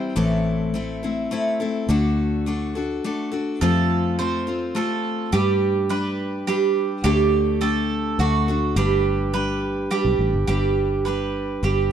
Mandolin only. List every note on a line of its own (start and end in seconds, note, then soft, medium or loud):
3.61 4.17 A4 medium
4.19 4.75 C5 medium
4.76 5.32 A4 medium
5.33 5.89 G4 medium
5.90 6.46 B4 medium
6.47 7.03 G4 medium
7.04 7.60 G4 medium
7.61 8.18 A4 medium
8.20 8.76 F#4 medium
8.76 9.33 G4 medium
9.34 9.90 B4 medium
9.91 10.46 G4 medium
10.48 11.04 G4 medium
11.05 11.62 B4 medium
11.64 11.92 G4 medium